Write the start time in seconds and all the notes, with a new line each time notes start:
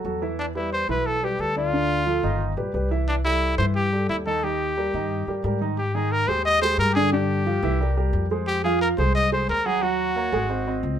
0.05 E2 F#3 F#4 A4
0.22 E3 E4 E5
0.39 D4
0.55 G3 E4 G4 B4
0.73 C5
0.89 B1 E3 E4 B4 E5
1.06 A4
1.23 G3 G4 B4
1.39 D2 A4
1.56 D3 D4 F4 D5
1.73 D3 D4 D5
2.06 F3 F4 A4
2.23 G1 D#3 D#4 D#5
2.57 A#1 G3 G4 B4
2.74 C2 G3 G4 B4
2.91 E3 E4 E5
3.08 D4
3.25 G3 E4 G4 A4
3.58 G2 E3 E4 C5 E5
3.76 G4
3.93 G3 G4 A4
4.09 D#2 E4
4.26 D#3 D#4 A4 D#5
4.44 D#3 D#4 G4 D#5
4.77 G3 G4 A#4
4.94 G2 D#3 D#4 D#5
5.28 G3 G4 A#4
5.44 G#2 G3 G4 A#4
5.61 D#3 D#4 D#5
5.78 G4
5.95 D#3 D#4 G#4 D#5
6.12 A#4
6.28 D#2 G#3 G4 G#4 C5
6.45 D#5
6.62 G#3 G4 G#4 C5
6.78 G2 A#4
6.92 G4 G#4
6.96 D3 D4 D5
7.12 D3 D4 G4 D5
7.46 F3 F4 G4
7.63 C2 E3 E4 E5
7.80 G3 G4 A#4
7.97 G3 G4 A#4
8.13 F2
8.31 G#3 G#4 C5
8.47 G4
8.64 F3 F4 G#4 F5
8.81 A#4
8.98 C2 G#3 G#4 C5
9.15 D#5
9.32 G#3 G#4 C5
9.48 D#2 A#4
9.66 F#3 F#4 G#4 F#5
9.82 F#3 F#4 F#5
10.16 A#3 A#4 C#5
10.32 G#1 G#3 G#4 G#5
10.49 C4 C5 D#5
10.67 C4 C5 D#5
10.83 C#2